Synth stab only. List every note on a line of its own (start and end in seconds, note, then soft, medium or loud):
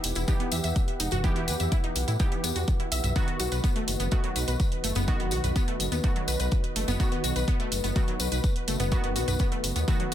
0.00 0.25 E3 medium
0.00 0.25 B3 medium
0.00 0.25 G4 loud
0.28 1.21 E3 medium
0.28 1.21 B3 medium
0.28 1.21 G4 medium
1.24 2.17 E3 medium
1.24 2.17 B3 medium
1.24 2.17 G4 loud
2.20 3.13 E3 medium
2.20 3.13 B3 medium
2.20 3.13 G4 medium
3.16 4.09 D#3 medium
3.16 4.09 B3 medium
3.16 4.09 F#4 loud
4.12 5.05 D#3 medium
4.12 5.05 B3 medium
4.12 5.05 F#4 medium
5.08 6.01 D#3 medium
5.08 6.01 B3 medium
5.08 6.01 F#4 loud
6.04 6.97 D#3 medium
6.04 6.97 B3 medium
6.04 6.97 F#4 medium
7.00 7.93 D#3 medium
7.00 7.93 B3 medium
7.00 7.93 F#4 loud
7.96 8.89 D#3 medium
7.96 8.89 B3 medium
7.96 8.89 F#4 medium
8.92 9.85 D#3 medium
8.92 9.85 B3 medium
8.92 9.85 F#4 loud
9.88 10.14 D#3 medium
9.88 10.14 B3 medium
9.88 10.14 F#4 medium